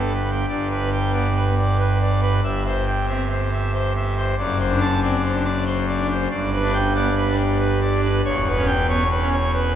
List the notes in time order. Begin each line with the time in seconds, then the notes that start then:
Already playing: G1 G2 B3 A4
0.15 B4
0.31 G5
0.48 G1 G2 D5
0.70 B4
0.92 G5
1.13 B3 D5
1.35 B4
1.58 D5
1.79 B4
2.01 D5
2.22 B4
2.43 G1 G2 E5
2.66 C5
2.86 G5
3.08 C4 E5
3.31 C5
3.52 E5
3.73 C5
3.95 E5
4.17 C5
4.38 F#1 F#2 D5
4.60 C5
4.70 D4
4.80 A5
5.02 C4 D5
5.24 C5
5.34 D4
5.44 D5
5.66 C5
5.87 D5
5.99 D4
6.10 C5
6.31 G1 G2 D5
6.53 B4
6.63 D4
6.73 G5
6.95 B3 D5
7.16 B4
7.27 D4
7.38 D5
7.60 B4
7.81 D5
7.92 D4
8.03 B4
8.25 E1 E2 C#5
8.47 B4
8.57 C#4
8.67 G5
8.88 B3 C#5
9.10 B4
9.21 C#4
9.32 C#5
9.53 B4